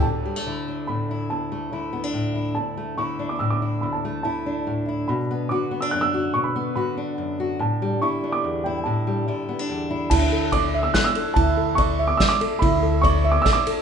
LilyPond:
<<
  \new Staff \with { instrumentName = "Upright piano" } { \time 3/4 \key d \major \tempo 4 = 143 a''2 b''4 | a''4. r4. | a''4 cis'''8. d'''16 e'''16 d'''8. | b''16 a''8. a''4. r8 |
b''4 d'''8. e'''16 fis'''16 e'''8. | cis'''16 b''8. b''4. r8 | a''4 cis'''8. d'''16~ \tuplet 3/2 { d'''8. g''8 g''16 } | a''2~ a''8 r8 |
a''4 d'''8. e'''16 fis'''16 e'''8. | a''4 cis'''8. d'''16 e'''16 d'''8. | b''4 cis'''8. d'''16 e'''16 d'''8. | }
  \new Staff \with { instrumentName = "Handpan" } { \time 3/4 \key d \major r2. | r2. | r2. | r2. |
r2. | r2. | r2. | r2. |
e'8 a'8 d''8 e''8 d''8 a'8 | e'8 a'8 d''8 e''8 d''8 a'8 | e'8 a'8 d''8 e''8 d''8 a'8 | }
  \new Staff \with { instrumentName = "Steel-string acoustic guitar" } { \time 3/4 \key d \major << { r8 g16 a16 e'8 d'4 e'8~ | e'8 a8 e'8 b16 d'8. e'8~ | e'8 a8 e'8 d'4 e'8~ | e'8 a8 e'8 d'4 e'8 |
r8 b8 fis'8 b16 d'8. fis'8 | r8 b8 fis'8 d'4 fis'8 | r8 g8 e'8 d'4 e'8~ | e'8 g8 e'8 b16 d'8. e'8~ |
e'2. | r2. | r2. | } \\ { d,4 d4 a,4 | d,4 d4 a,4 | d,4 d4 a,4 | d,4 d4 a,4 |
b,4 d4 fis,4 | b,4 d4 fis,4 | a,4 d4 e,4 | a,4 d4 e,4 |
r2. | r2. | r2. | } >> }
  \new Staff \with { instrumentName = "Upright bass" } { \clef bass \time 3/4 \key d \major r2. | r2. | r2. | r2. |
r2. | r2. | r2. | r2. |
d,2 r4 | d,2 r4 | d,2 r4 | }
  \new DrumStaff \with { instrumentName = "Drums" } \drummode { \time 3/4 r4 r4 r4 | r4 r4 r4 | r4 r4 r4 | r4 r4 r4 |
r4 r4 r4 | r4 r4 r4 | r4 r4 r4 | r4 r4 r4 |
<cymc bd>4 <bd cymr>4 <bd cymr sn>8 cymr8 | <bd cymr>4 <bd cymr>4 <bd cymr sn>8 cymr8 | <bd cymr>4 <bd cymr>4 <bd cymr sn>8 cymr8 | }
>>